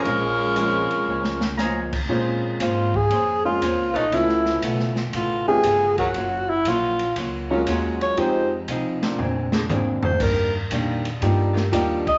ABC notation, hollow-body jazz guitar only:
X:1
M:4/4
L:1/8
Q:"Swing" 1/4=118
K:Bbm
V:1 name="Hollow-body jazz guitar"
[B,,F,A,D] z [B,,F,A,D] z [B,,F,A,D] z [B,,F,A,D] z | [B,DAc] z [B,DAc] z [B,DAc] z [B,DAc] z | [D,=A,_CF] z [D,A,CF] z [D,A,CF] z [D,A,CF] z | [G,B,DF] z [G,B,DF] z [G,B,DF] z [G,B,DF] z |
[F,CEA] z [F,CEA] z [B,,A,C=D] z [B,,A,CD] z | [E,=G,B,=D] z [E,G,B,D] z [E,G,B,D] z [E,G,B,D] z |]